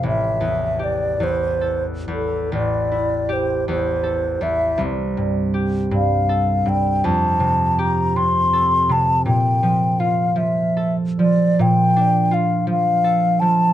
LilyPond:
<<
  \new Staff \with { instrumentName = "Flute" } { \time 12/8 \key a \phrygian \tempo 4. = 53 e''4 d''8 c''4 a'8 d''4 c''8 c''4 e''8 | r4. f''4 g''8 a''4 bes''8 c'''4 a''8 | g''4 f''8 e''4 d''8 g''4 f''8 f''4 a''8 | }
  \new Staff \with { instrumentName = "Harp" } { \clef bass \time 12/8 \key a \phrygian <a,, e' g' a'>8 e,8 g'8 e,8 a'8 e,8 a,,8 e'8 g'8 e,8 a'8 e,8 | c,8 g,8 g'8 g,8 a'8 g,8 f,8 c8 g'8 c8 a'8 c8 | bes,8 f8 f'8 f8 a'8 f8 bes,8 d'8 f'8 f8 a'8 f8 | }
>>